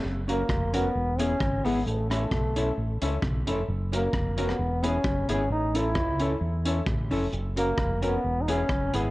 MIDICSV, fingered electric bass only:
0, 0, Header, 1, 2, 480
1, 0, Start_track
1, 0, Tempo, 455581
1, 42, Time_signature, 4, 2, 24, 8
1, 9594, End_track
2, 0, Start_track
2, 0, Title_t, "Fingered electric bass"
2, 0, Program_c, 0, 33
2, 46, Note_on_c, 0, 30, 91
2, 452, Note_off_c, 0, 30, 0
2, 519, Note_on_c, 0, 29, 85
2, 928, Note_off_c, 0, 29, 0
2, 1004, Note_on_c, 0, 28, 89
2, 1410, Note_off_c, 0, 28, 0
2, 1480, Note_on_c, 0, 32, 96
2, 1700, Note_off_c, 0, 32, 0
2, 1740, Note_on_c, 0, 32, 75
2, 1928, Note_off_c, 0, 32, 0
2, 1960, Note_on_c, 0, 33, 91
2, 2368, Note_off_c, 0, 33, 0
2, 2436, Note_on_c, 0, 35, 88
2, 2845, Note_off_c, 0, 35, 0
2, 2923, Note_on_c, 0, 33, 92
2, 3141, Note_off_c, 0, 33, 0
2, 3180, Note_on_c, 0, 37, 76
2, 3367, Note_off_c, 0, 37, 0
2, 3395, Note_on_c, 0, 35, 91
2, 3617, Note_off_c, 0, 35, 0
2, 3654, Note_on_c, 0, 29, 75
2, 3844, Note_off_c, 0, 29, 0
2, 3878, Note_on_c, 0, 30, 98
2, 4286, Note_off_c, 0, 30, 0
2, 4356, Note_on_c, 0, 29, 85
2, 4765, Note_off_c, 0, 29, 0
2, 4834, Note_on_c, 0, 28, 93
2, 5244, Note_off_c, 0, 28, 0
2, 5312, Note_on_c, 0, 30, 86
2, 5534, Note_off_c, 0, 30, 0
2, 5571, Note_on_c, 0, 32, 74
2, 5761, Note_off_c, 0, 32, 0
2, 5794, Note_on_c, 0, 33, 97
2, 6269, Note_off_c, 0, 33, 0
2, 6269, Note_on_c, 0, 37, 90
2, 6681, Note_off_c, 0, 37, 0
2, 6752, Note_on_c, 0, 40, 101
2, 7162, Note_off_c, 0, 40, 0
2, 7234, Note_on_c, 0, 33, 78
2, 7456, Note_off_c, 0, 33, 0
2, 7495, Note_on_c, 0, 29, 83
2, 7684, Note_off_c, 0, 29, 0
2, 7717, Note_on_c, 0, 30, 90
2, 8126, Note_off_c, 0, 30, 0
2, 8193, Note_on_c, 0, 29, 96
2, 8603, Note_off_c, 0, 29, 0
2, 8682, Note_on_c, 0, 28, 92
2, 9089, Note_off_c, 0, 28, 0
2, 9156, Note_on_c, 0, 30, 86
2, 9377, Note_off_c, 0, 30, 0
2, 9420, Note_on_c, 0, 32, 79
2, 9594, Note_off_c, 0, 32, 0
2, 9594, End_track
0, 0, End_of_file